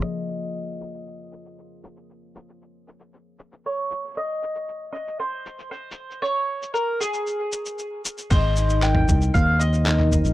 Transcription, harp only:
X:1
M:4/4
L:1/8
Q:1/4=116
K:Ab
V:1 name="Harp"
z8 | z8 | z8 | z8 |
A, E B2 C C [CEB] E |]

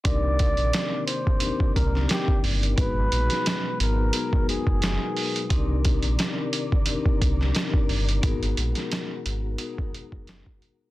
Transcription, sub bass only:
X:1
M:4/4
L:1/16
Q:"Swing 16ths" 1/4=88
K:Ablyd
V:1 name="Sub bass" clef=bass
C,,3 B,,, z6 C,,2 z2 G,,,2 | A,,,2 B,,, z3 A,,,2 z3 _G,,,2 z3 | C,,3 B,,, z6 C,,2 z2 G,,,2 | A,,,2 B,,, z3 A,,,2 z3 _G,,,2 z3 |]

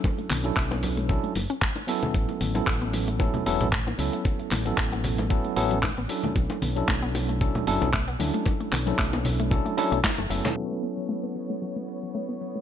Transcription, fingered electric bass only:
X:1
M:4/4
L:1/16
Q:"Swing 16ths" 1/4=114
K:A
V:1 name="Fingered electric bass" clef=bass
z2 B,,, z B,,,4- B,,, z F,,, z4 z | A,,, z A,,, z A,,,4- A,,, z E,,, A,,,3 C,, z | z2 A,,, z A,,,4- A,,, z A,,,3 A,,, z2 | B,,, z B,,, z B,,,4- B,,, z F,,, B,,,3 D,, z |
z2 B,,, z B,,,4- B,,, z2 B,,, z F,,, F,,, z | z16 |]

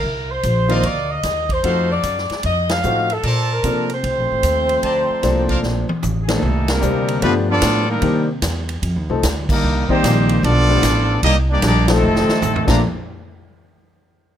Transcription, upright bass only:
X:1
M:4/4
L:1/8
Q:"Swing" 1/4=150
K:Bb
V:1 name="Upright bass" clef=bass
C,,2 B,,,2 D,,2 E,,2 | F,,2 _G,, z F,,2 A,,2 | B,,2 C,2 (3C,, B,,, A,,, E,,2 | D,, z C,,2 B,,, z A,,,2 |
C,,2 D,,2 G,,2 A,,2 | C,2 =E,,2 (3F,, _E,, C,, D,,2 | C,, z B,,,2 =B,,,2 A,,,2 | C,,2 B,,,2 F,,, z A,,, B,,, |
z8 |]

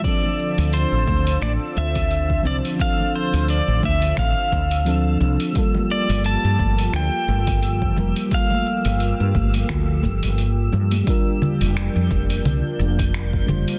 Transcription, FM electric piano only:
X:1
M:4/4
L:1/8
Q:"Swing 16ths" 1/4=87
K:Dm
V:1 name="FM electric piano"
[F,CDA]6- [F,CDA] [F,CDc] | [F,CDA]6 [F,CDA]2 | [G,B,FA]6- [G,B,FA] [G,B,FB] | [G,B,FA]6 z2 |
[G,DFB]6- [G,DFB] [G,DFc] |]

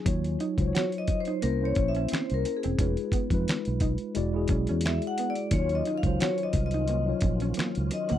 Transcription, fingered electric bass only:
X:1
M:4/4
L:1/16
Q:"Swing 16ths" 1/4=88
K:Ebdor
V:1 name="Fingered electric bass" clef=bass
E,,2 z D,, z4 C,,2 B,,,2 z C,, z =E,,, | F,,, z2 F,, z _C,,2 z =E,,,2 =B,,, =E,,2 z3 | E,,2 z D,, z2 C,,4 B,,,2 z D,, z =D,, |]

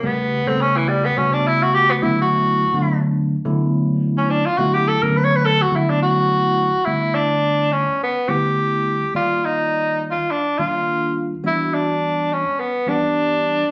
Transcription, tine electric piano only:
X:1
M:4/4
L:1/16
Q:"Swing 16ths" 1/4=105
K:Glyd
V:1 name="Tine electric piano"
[C,G,A,B,G]3 [C,G,A,B,A]4 z [C,G,A,B,F]6 [D,F,A,B,E]2- | [D,F,A,B,E]2 z [D,F,A,B,D]4 z [D,F,A,B,E]6- [D,F,A,B,E] z | [D,F,A,B,E]3 [D,F,A,B,C]4 z [D,F,A,B,E]6- [D,F,A,B,E] z | [D,G,A,B,E]6- [D,G,A,B,E] z3 [D,G,A,B,E]4- [D,G,A,B,E] z |
[_E,G,_B,=Fd]6- [E,G,B,Fd] z3 [E,G,B,DF]4- [E,G,B,DF] z | [E,G,B,DF]6- [E,G,B,DF] z3 [E,G,B,DG]4- [E,G,B,DG] z |]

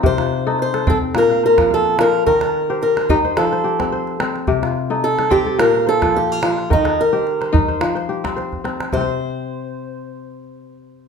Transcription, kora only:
X:1
M:4/4
L:1/16
Q:"Swing 16ths" 1/4=108
K:Fmix
V:1 name="Kora"
[EG] F2 A2 A C3 f c2 f3 z | B a2 c2 c E c2 c G2 c3 z | G F2 A2 A C A2 f c2 f3 z | B A2 c2 c E c2 c G2 c3 z |
[C,Cc]16 |]
V:2 name="Kora" clef=bass
C,2 z E2 z C2 B,,2 z F,2 z F,2 | E,2 z G2 z E2 F,2 z C2 z C2 | C,2 z E2 z C2 B,,2 z F,2 z F,2 | E,2 z G2 z E2 F,2 z C2 z C2 |
z16 |]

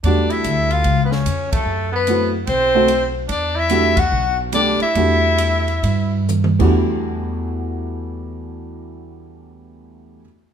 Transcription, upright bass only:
X:1
M:4/4
L:1/8
Q:"Swing" 1/4=140
K:Em
V:1 name="Upright bass" clef=bass
E,,2 D,,2 ^C,,2 ^E,,2 | F,,4 B,,,4 | E,,4 B,,,3 z | E,,4 G,,3 E,,- |
E,,8- | E,,8 |]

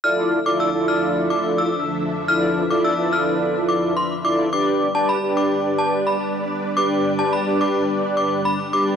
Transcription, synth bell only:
X:1
M:4/4
L:1/16
Q:1/4=107
K:Ddor
V:1 name="Synth bell"
f'2 z d' e'2 f' z2 d' z e'2 z3 | f' z2 d' e'2 f' z3 d'2 c' z d' z | d'2 z a b2 d' z2 a z b2 z3 | d' z2 a b2 d' z3 d'2 b z d' z |]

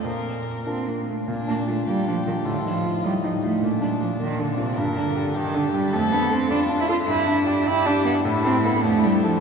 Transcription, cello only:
X:1
M:6/8
L:1/16
Q:3/8=103
K:Bb
V:1 name="Cello"
B,6 C2 B,2 A,2 | z2 B,2 A,2 G,2 F,2 E,2 | D,2 F,4 G,2 F,2 A,2 | z2 G,2 F,2 E,2 D,2 C,2 |
B,,2 D,4 E,2 D,2 G,2 | [K:Ddor] A,2 B,2 C2 D3 E F2 | E4 D2 E2 D2 B,2 | z2 C2 B,2 A,2 G,2 F,2 |]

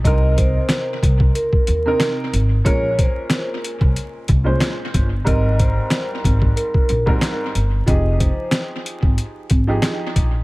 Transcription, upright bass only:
X:1
M:4/4
L:1/16
Q:"Swing 16ths" 1/4=92
K:Fm
V:1 name="Upright bass" clef=bass
C,,4 z2 C,,2 z2 E,,2 z2 A,,,2 | B,,,3 z4 C,, z2 C,,2 z2 G,,,2 | A,,,4 z2 A,,,2 z2 B,,,2 z2 G,,,2 | F,,,3 z4 A,,, z2 A,,,2 z2 B,,,2 |]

